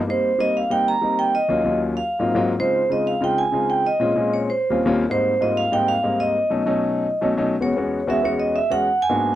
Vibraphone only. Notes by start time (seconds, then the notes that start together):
0.10 C5
0.40 D#5
0.57 F5
0.71 G5
0.88 A#5
1.19 G5
1.35 D#5
1.97 F5
2.60 C5
2.92 D#5
3.07 F5
3.24 G5
3.38 G#5
3.70 G5
3.87 D#5
4.34 C#5
4.50 C5
5.11 C5
5.42 D#5
5.57 F5
5.73 G5
5.88 F5
6.20 D#5
7.62 C#5
8.10 E5
8.25 C#5
8.40 D#5
8.56 E5
8.72 F#5
9.02 G#5